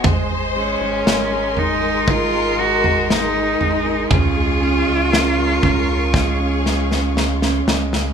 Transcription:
<<
  \new Staff \with { instrumentName = "String section" } { \time 4/4 \key gis \dorian \tempo 4 = 59 << { <dis'' gis'' bis''>1 | <cis'' eis'' cis'''>1 | } \\ { gis'1~ | gis'1 | } >> }
  \new Staff \with { instrumentName = "Violin section" } { \time 4/4 \key gis \dorian bis'4 ais'2. | gis'4 ais'4 gis'4 eis'4 | }
  \new Staff \with { instrumentName = "Cello" } { \time 4/4 \key gis \dorian r8 cis'4 dis'8 eis'8 fis'8 dis'4 | eis'2. r4 | }
  \new Staff \with { instrumentName = "Grand piano" } { \clef bass \time 4/4 \key gis \dorian gis16 gis16 gis16 gis16 gis16 gis16 gis16 gis16 dis'16 gis16 gis16 gis16 gis16 gis16 gis16 gis16 | cis16 gis16 cis'16 gis16 cis'16 gis16 cis'16 cis16 gis16 cis'16 gis16 cis'16 gis16 cis'16 gis16 cis16 | }
  \new Staff \with { instrumentName = "Sub bass" } { \clef bass \time 4/4 \key gis \dorian gis,,8. gis,,16 gis,,2~ gis,,8 gis,,8 | cis,8. cis,8. cis,2 cis,8 | }
  \new DrumStaff \with { instrumentName = "Drums" } \drummode { \time 4/4 <bd tomfh>4 sn8 tomfh8 bd8. tomfh16 sn8 tomfh8 | <bd tomfh>4 sn8 <bd tomfh>8 <bd sn>8 sn16 sn16 sn16 sn16 sn16 sn16 | }
>>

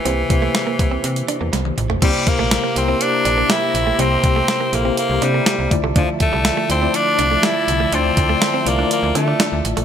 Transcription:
<<
  \new Staff \with { instrumentName = "Analog synth pad" } { \time 4/4 \key c \mixolydian \tempo 4 = 122 << { r1 | <g' c'' bes''>1~ | <g' c'' bes''>2.~ <g' c'' bes''>8 <f d'' a''>8~ | <f d'' a''>1~ |
<f d'' a''>1 | } \\ { r1 | e''1~ | e''1~ | e''1~ |
e''1 | } >> }
  \new Staff \with { instrumentName = "Tine electric piano" } { \time 4/4 \key c \mixolydian <bes e' g' c''>16 r16 <bes e' g' c''>4~ <bes e' g' c''>16 r2 r16 | <bes e' g' c''>4 r8 <bes e' g' bes'>16 <bes e' g' c''>4~ <bes e' g' c''>16 r4 | <bes e' g' c''>4 r8 <bes e' g' a'>16 <bes e' g' c''>4~ <bes e' g' c''>16 r8 <a e' f' d''>8~ | <a e' f' d''>4 r8 <a e' f' d''>16 <a e' f' d''>4~ <a e' f' d''>16 r4 |
<a e' f' d''>4 r8 <a e' f' d''>16 <a e' f' d''>4~ <a e' f' d''>16 r4 | }
  \new Staff \with { instrumentName = "Tine electric piano" } { \clef bass \time 4/4 \key c \mixolydian c4. r2 r8 | c4. r2 r8 | c4. r2 d8~ | d4 r2 r8 d8~ |
d4 r2. | }
  \new Staff \with { instrumentName = "Clean electric guitar" } { \time 4/4 \key c \mixolydian c'16 r8 a16 r16 bes16 r16 c'16 r8 d'16 bes16 g16 r8 a16 | c'16 r8 a16 r16 bes16 r16 c'16 r8 d'16 bes16 g16 r8 a16 | c'16 r8 a16 r16 bes16 r16 c'16 r8 d'16 bes16 g16 r8 a16 | d'16 r8 g16 r16 a16 r16 c'16 r8 d'16 a16 g16 r8 a16 |
d'16 r8 a16 r16 c'16 r16 d'16 r8 c'16 d'16 d'16 r8 a16 | }
  \new Staff \with { instrumentName = "Tenor saxophone" } { \time 4/4 \key c \mixolydian e2. r4 | g8 bes4 c'8 d'4 e'4 | c'4. bes8 bes8 g4 r8 | f8 a4 c'8 d'4 e'4 |
c'4. bes8 bes8 a4 r8 | }
  \new Staff \with { instrumentName = "FM bass" } { \clef bass \time 4/4 \key c \mixolydian c,8 c,8 r8 c,8 c8 r16 e,16 c,8 bes,,8 | c,16 r8 bes,,8 r16 c,8 r8 bes,,8 r8 bes,,8 | c,8 c,8 r8 bes,,8 r16 c,16 c8 r16 c,16 d,16 c,16 | d,16 r8 c,8 r16 d,8 r8 c,8 r8 c,8 |
d,8 d,8 r8 c,8 r16 d,16 d8 r16 d,16 a,,16 bes,,16 | }
  \new DrumStaff \with { instrumentName = "Drums" } \drummode { \time 4/4 hh8 <hh bd>8 <hh sn>8 <hh bd>8 hh16 hh16 hh8 <hh sn>16 tommh16 <hh toml>16 tomfh16 | <cymc hh bd>8 <hh bd>8 <hh sn>8 hh8 hh8 hh8 <hh sn>8 hh8 | hh8 <hh bd>8 <hh sn>8 hh8 hh8 hh8 <hh sn>8 <hh bd>8 | <hh bd>8 <hh bd>8 <hh sn>8 hh8 hh8 hh8 <hh sn>8 hh8 |
hh8 <hh bd>8 <hh sn>8 hh8 hh8 hh8 <hh sn>8 hh16 hh16 | }
>>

